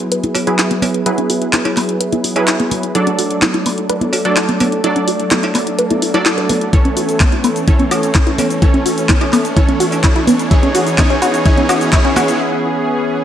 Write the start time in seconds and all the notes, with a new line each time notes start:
Already playing: F#3 B3 E4 G#4 B4, riser
0.12 B4, closed hi-hat
0.24 E4, closed hi-hat, high conga
0.35 F#4, open hi-hat, cowbell
0.47 F#3 E4 G#4 B4, closed hi-hat
0.59 E4, clap, closed hi-hat
0.71 B3, closed hi-hat
0.82 B3, open hi-hat, cowbell, high conga
0.94 closed hi-hat
1.06 F#3 E4 G#4 B4, closed hi-hat
1.18 D4, closed hi-hat
1.30 F#4, open hi-hat
1.42 closed hi-hat
1.53 E4, clap, closed hi-hat, high conga
1.65 E4, closed hi-hat, cowbell
1.77 B3, clap, open hi-hat, high woodblock
1.89 closed hi-hat
2.01 B4, closed hi-hat
2.12 E4, closed hi-hat, high conga
2.24 F#4, open hi-hat
2.36 F#3 E4 G#4 B4, closed hi-hat, cowbell
2.47 E4, clap, closed hi-hat
2.60 B3, closed hi-hat
2.71 B3, open hi-hat, high conga
2.83 closed hi-hat
2.95 F#3 A3 D4 E4 A4 D5, closed hi-hat
3.07 D4, closed hi-hat
3.19 F#4, open hi-hat
3.31 closed hi-hat
3.42 E4, clap, closed hi-hat, high conga
3.54 E4, closed hi-hat
3.66 B3, open hi-hat, high woodblock
3.78 closed hi-hat
3.90 B4, closed hi-hat
4.01 E4, closed hi-hat, high conga
4.13 F#4, open hi-hat, cowbell
4.25 F#3 D4 A4 D5, closed hi-hat
4.36 E4, clap, closed hi-hat
4.49 B3, closed hi-hat
4.60 B3, open hi-hat, cowbell, high conga
4.72 closed hi-hat
4.84 F#3 D4 E4 A4 D5, closed hi-hat
4.96 D4, closed hi-hat
5.08 F#4, open hi-hat
5.20 closed hi-hat
5.31 E4, clap, closed hi-hat, high conga
5.43 E4, closed hi-hat, cowbell
5.55 B3, clap, open hi-hat, high woodblock
5.67 closed hi-hat
5.79 B4, closed hi-hat
5.90 E4, closed hi-hat, high conga
6.02 E4, open hi-hat
6.14 F#3 D4 E4 A4 D5, closed hi-hat, cowbell
6.26 E4, clap, closed hi-hat
6.38 B4, closed hi-hat
6.49 B4, open hi-hat, high conga
6.61 closed hi-hat
6.73 E3 C#4 E4 A4 C#5, kick, closed hi-hat, cabasa
6.85 C#4, closed hi-hat
6.97 F#4, open hi-hat, cabasa
7.09 closed hi-hat, cabasa
7.20 E4, kick, clap, closed hi-hat, high conga, cabasa
7.32 E4, closed hi-hat
7.44 B3, open hi-hat, cabasa, high woodblock
7.56 closed hi-hat, cabasa
7.68 E3 C#4 E4 A4 C#5, kick, closed hi-hat, cabasa
7.79 C#4, closed hi-hat, high conga
7.91 F#4, open hi-hat, cowbell, cabasa, high woodblock
8.03 closed hi-hat, cabasa
8.15 E4, kick, clap, closed hi-hat, cabasa, high woodblock
8.27 E4, closed hi-hat
8.38 B3, open hi-hat, cowbell, high conga, cabasa
8.50 closed hi-hat, cabasa
8.62 E3 C#4 E4 A4 C#5, kick, closed hi-hat, cabasa
8.74 C#4, closed hi-hat
8.86 F#4, open hi-hat, cabasa
8.98 closed hi-hat, cabasa
9.09 E4, kick, clap, closed hi-hat, high conga, cabasa
9.21 E4, closed hi-hat, cowbell, high woodblock
9.33 B3, clap, open hi-hat, cabasa, high woodblock
9.45 closed hi-hat, cabasa
9.56 E3 C#4 E4 A4 C#5, kick, closed hi-hat, cabasa
9.68 C#4, closed hi-hat, high conga
9.80 F#4, open hi-hat, cabasa
9.92 closed hi-hat, cowbell, cabasa
10.04 E4, kick, clap, closed hi-hat, cabasa
10.16 E4, closed hi-hat
10.27 B3, open hi-hat, high conga, cabasa
10.39 closed hi-hat, cabasa
10.51 E3 B3 C#4 E4 G#4 C#5, kick, closed hi-hat, cabasa
10.63 C#4, closed hi-hat
10.75 F#4, open hi-hat, cabasa
10.87 closed hi-hat, cabasa
10.98 E3 C#4 E4 G#4 C#5, kick, clap, closed hi-hat, high conga, cabasa
11.10 C#4, closed hi-hat
11.22 F#4, open hi-hat, cabasa, high woodblock
11.34 closed hi-hat, cabasa
11.46 E3 C#4 E4 G#4 C#5, kick, closed hi-hat, cabasa
11.57 C#4, closed hi-hat, high conga
11.69 F#4, open hi-hat, cowbell, cabasa, high woodblock
11.81 closed hi-hat, cabasa
11.93 E3 C#4 E4 G#4 C#5, kick, clap, closed hi-hat, cabasa, high woodblock
12.05 C#4, closed hi-hat
12.16 F#4, open hi-hat, cowbell, high conga, cabasa
12.28 closed hi-hat, cabasa